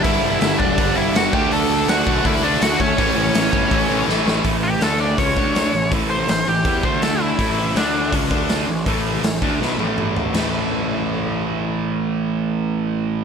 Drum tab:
CC |--------|--------|--------|--------|
HH |o-o-o-o-|o-o-o-o-|o-o-o---|o-o-o-o-|
SD |--o---o-|--o---o-|--o---oo|--o---o-|
T1 |--------|--------|--------|--------|
T2 |--------|--------|--------|--------|
FT |--------|--------|--------|--------|
BD |o--oo--o|---oo--o|o--oo---|o---oo--|

CC |--------|--------|--------|x-------|
HH |o-o-o-o-|o-o-o-o-|o-o-----|--------|
SD |--o---o-|--o---o-|--o-o---|o-------|
T1 |--------|--------|-----o--|--------|
T2 |--------|--------|------o-|--------|
FT |--------|--------|-------o|--------|
BD |o---oo--|o---oo--|o--o----|--------|

CC |--------|
HH |--------|
SD |--------|
T1 |--------|
T2 |--------|
FT |--------|
BD |--------|